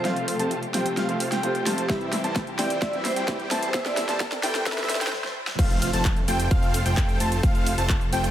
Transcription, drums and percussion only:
0.05 snare medium
0.05 closed hi-hat soft
0.16 closed hi-hat soft
0.28 open hi-hat medium
0.39 closed hi-hat soft
0.51 closed hi-hat soft
0.63 closed hi-hat soft
0.74 snare medium
0.74 open hi-hat loud
0.86 closed hi-hat soft
0.97 snare medium
0.97 closed hi-hat medium
1.09 closed hi-hat soft
1.20 open hi-hat loud
1.32 snare medium
1.32 closed hi-hat medium
1.43 closed hi-hat medium
1.55 closed hi-hat soft
1.66 snare medium
1.66 open hi-hat loud
1.78 closed hi-hat medium
1.89 kick loud
1.89 snare medium
1.89 closed hi-hat medium
2.01 closed hi-hat soft
2.13 snare medium
2.13 open hi-hat loud
2.24 closed hi-hat soft
2.36 kick loud
2.36 snare medium
2.36 closed hi-hat soft
2.47 closed hi-hat soft
2.59 snare medium
2.59 open hi-hat loud
2.70 closed hi-hat medium
2.82 kick loud
2.82 snare medium
2.82 closed hi-hat medium
2.93 closed hi-hat soft
3.05 snare medium
3.05 open hi-hat loud
3.16 closed hi-hat soft
3.28 kick loud
3.28 snare medium
3.28 closed hi-hat soft
3.40 closed hi-hat soft
3.51 snare medium
3.51 open hi-hat loud
3.63 closed hi-hat medium
3.74 kick loud
3.74 snare medium
3.74 closed hi-hat soft
3.86 snare medium
3.86 closed hi-hat soft
3.97 snare medium
3.97 open hi-hat loud
4.09 snare medium
4.09 closed hi-hat soft
4.20 kick loud
4.20 snare loud
4.20 closed hi-hat soft
4.32 snare medium
4.32 closed hi-hat soft
4.43 snare medium
4.43 open hi-hat loud
4.55 snare medium
4.55 closed hi-hat medium
4.66 kick loud
4.66 snare loud
4.66 closed hi-hat medium
4.72 snare medium
4.78 snare medium
4.78 closed hi-hat soft
4.84 snare medium
4.90 snare loud
4.90 open hi-hat loud
4.95 snare medium
5.01 snare medium
5.01 closed hi-hat medium
5.07 snare medium
5.13 snare medium
5.24 snare medium
5.47 snare medium
5.59 kick loud
5.59 closed hi-hat medium
5.59 crash loud
5.59 shaker soft
5.70 closed hi-hat soft
5.70 shaker soft
5.82 open hi-hat loud
5.82 shaker medium
5.93 closed hi-hat soft
5.93 shaker soft
6.05 kick loud
6.05 clap loud
6.05 closed hi-hat medium
6.05 shaker soft
6.17 closed hi-hat soft
6.17 shaker soft
6.28 open hi-hat loud
6.28 shaker medium
6.40 closed hi-hat medium
6.40 shaker soft
6.51 kick loud
6.51 closed hi-hat medium
6.51 shaker soft
6.63 closed hi-hat soft
6.63 shaker soft
6.74 open hi-hat loud
6.74 shaker medium
6.86 closed hi-hat medium
6.86 shaker soft
6.97 kick loud
6.97 clap loud
6.97 closed hi-hat medium
6.97 shaker soft
7.09 closed hi-hat soft
7.09 shaker soft
7.20 open hi-hat loud
7.20 shaker medium
7.32 closed hi-hat medium
7.32 shaker soft
7.43 kick loud
7.43 closed hi-hat medium
7.43 shaker soft
7.55 closed hi-hat soft
7.55 shaker soft
7.66 open hi-hat loud
7.66 shaker medium
7.78 closed hi-hat soft
7.78 shaker soft
7.89 kick loud
7.89 clap loud
7.89 closed hi-hat medium
7.89 shaker soft
8.01 closed hi-hat soft
8.01 shaker soft
8.13 open hi-hat loud
8.13 shaker medium
8.24 closed hi-hat medium
8.24 shaker soft

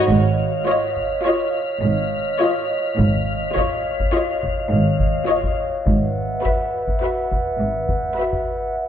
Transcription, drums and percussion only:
0.10 taiko medium
0.97 taiko soft
2.99 taiko medium
3.56 taiko medium
4.00 taiko medium
4.43 taiko medium
5.00 taiko medium
5.43 taiko medium
5.87 taiko medium
6.45 taiko medium
6.88 taiko medium
7.32 taiko medium
7.89 taiko medium
8.33 taiko medium

